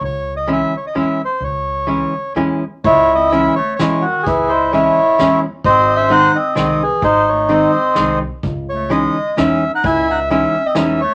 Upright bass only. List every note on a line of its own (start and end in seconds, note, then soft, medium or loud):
0.01 0.61 C#2 medium
0.95 1.25 E2 medium
1.40 2.02 C#2 medium
2.35 2.67 E2 medium
2.85 3.46 C#2 loud
3.80 4.10 E2 medium
4.27 4.87 C#2 medium
5.20 5.50 E2 medium
5.64 6.24 G#1 loud
6.57 6.87 C2 medium
7.02 7.63 G#1 loud
7.97 8.28 C2 medium
8.44 9.05 C#2 loud
9.38 9.69 E2 medium
9.84 10.43 C#2 loud
10.76 11.05 E2 medium